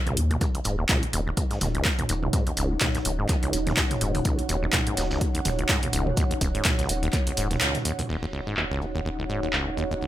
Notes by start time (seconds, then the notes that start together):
0.07 C#2, closed hi-hat, mid tom
0.17 D#2 E2, open hi-hat
0.31 D#2, closed hi-hat, mid tom
0.41 D#2 D#4 C#5 F#5, kick, closed hi-hat, shaker
0.55 C#2, closed hi-hat
0.64 D#1 G#2, open hi-hat, shaker
0.79 D#2
0.89 C#2, kick, snare, clap, closed hi-hat, mid tom, shaker
1.03 E2, closed hi-hat
1.13 D#1 D#2, open hi-hat, shaker
1.27 D#2
1.37 C#2, kick, closed hi-hat, shaker
1.51 G#2, snare, closed hi-hat
1.61 D#1 D#2, snare, mid tom, open hi-hat, shaker
1.75 C#2, closed hi-hat
1.85 E2, kick, snare, clap, closed hi-hat, shaker
1.99 D#2, closed hi-hat, mid tom
2.09 D#1 D#2, open hi-hat, shaker
2.23 C#2, mid tom
2.33 G#2, kick, closed hi-hat, shaker
2.47 D#2, closed hi-hat
2.57 D#1 C#2, open hi-hat, shaker
2.71 E2
2.81 D#2, kick, snare, clap, closed hi-hat, mid tom, shaker
2.95 D#2, snare, closed hi-hat
3.05 D#1 C#2, open hi-hat, shaker
3.19 G#2
3.29 D#2, kick, clap, closed hi-hat, shaker
3.43 C#2, closed hi-hat
3.53 D#1 E2, open hi-hat, shaker
3.67 D#2, snare, closed hi-hat, mid tom
3.77 D#2, kick, snare, clap, closed hi-hat, shaker
3.91 C#2, snare, closed hi-hat, mid tom
4.01 D#1 G#2, open hi-hat, shaker
4.15 D#2, closed hi-hat, mid tom
4.25 C#2, kick, closed hi-hat, shaker
4.39 E2, closed hi-hat
4.49 D#1 D#2, open hi-hat, shaker
4.63 D#2
4.73 C#2, kick, snare, clap, closed hi-hat, mid tom, shaker
4.87 G#2, closed hi-hat
4.97 D#1 D#2, snare, open hi-hat, shaker
5.11 C#2, snare, shaker
5.21 E2, kick, closed hi-hat, shaker
5.35 D#2, closed hi-hat
5.45 D#1 D#2, snare, mid tom, open hi-hat, shaker
5.59 C#2, closed hi-hat
5.69 G#2, kick, snare, clap, closed hi-hat, shaker
5.83 D#2, closed hi-hat, mid tom
5.93 D#1 C#2, open hi-hat, shaker
6.07 E2, mid tom
6.17 D#2, kick, closed hi-hat, shaker
6.31 D#2, closed hi-hat
6.41 D#1 C#2, kick, open hi-hat, shaker
6.55 G#2, closed hi-hat
6.65 D#2, kick, snare, clap, closed hi-hat, mid tom, shaker
6.79 C#2, snare, closed hi-hat
6.89 D#1 E2, open hi-hat, shaker
7.03 D#2, closed hi-hat
7.13 D#2, kick, clap, closed hi-hat, shaker
7.27 C#2, closed hi-hat
7.37 D#1 G#2, open hi-hat, shaker
7.51 D#2, snare, closed hi-hat, mid tom
7.61 C#2, snare, clap, closed hi-hat, shaker
7.75 E2, snare, closed hi-hat, mid tom
7.85 D#2, open hi-hat, shaker
7.99 D#2, closed hi-hat, mid tom
8.09 D#1 D#2 D#4 C#5 F#5, crash
8.23 D#2
8.33 C#2, shaker
8.47 G#2, shaker
8.57 D#2, clap, shaker
8.71 C#2
8.81 E2, shaker
8.95 D#2, shaker
9.05 D#2, shaker
9.19 C#2
9.29 G#2, shaker
9.43 D#2, shaker
9.53 C#2, clap, shaker
9.67 E2
9.77 D#2, shaker
9.91 D#2, shaker
10.01 C#2, shaker